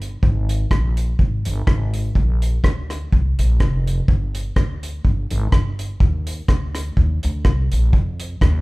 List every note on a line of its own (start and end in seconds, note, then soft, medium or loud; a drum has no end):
0.00 0.16 G1 medium
0.00 closed hi-hat medium
0.23 0.64 G#1 loud
0.23 kick loud
0.49 closed hi-hat loud
0.71 1.12 A#1 medium
0.71 kick loud
0.71 cross-stick loud
0.97 closed hi-hat medium
1.19 1.42 G#1 medium
1.19 kick loud
1.45 1.65 G1 medium
1.45 closed hi-hat loud
1.67 2.08 G#1 loud
1.67 kick loud
1.67 cross-stick loud
1.94 closed hi-hat medium
2.15 2.57 A#1 loud
2.15 kick loud
2.42 closed hi-hat medium
2.64 3.05 D2 medium
2.64 kick loud
2.64 cross-stick loud
2.90 cross-stick medium
2.90 closed hi-hat medium
3.12 3.35 C2 loud
3.12 kick loud
3.39 3.57 A#1 medium
3.39 closed hi-hat medium
3.60 4.01 F1 medium
3.60 kick loud
3.60 cross-stick loud
3.87 closed hi-hat medium
4.08 4.49 G1 loud
4.08 kick loud
4.35 closed hi-hat medium
4.56 4.98 D2 medium
4.56 kick loud
4.56 cross-stick loud
4.83 closed hi-hat medium
5.05 5.27 G1 medium
5.05 kick loud
5.31 5.50 G#1 medium
5.31 closed hi-hat medium
5.52 5.94 G1 medium
5.52 kick loud
5.52 cross-stick loud
5.79 closed hi-hat medium
6.00 6.42 D#2 medium
6.00 kick loud
6.27 closed hi-hat loud
6.48 6.90 D2 medium
6.48 kick loud
6.48 cross-stick loud
6.75 cross-stick medium
6.75 closed hi-hat loud
6.97 7.20 D#2 medium
6.97 kick loud
7.23 7.43 D2 loud
7.23 closed hi-hat medium
7.45 7.68 C2 loud
7.45 kick loud
7.45 cross-stick loud
7.72 7.91 A#1 medium
7.72 closed hi-hat medium
7.93 8.34 F2 loud
7.93 kick loud
8.20 closed hi-hat loud
8.41 8.61 D#2 loud
8.41 kick loud
8.41 cross-stick loud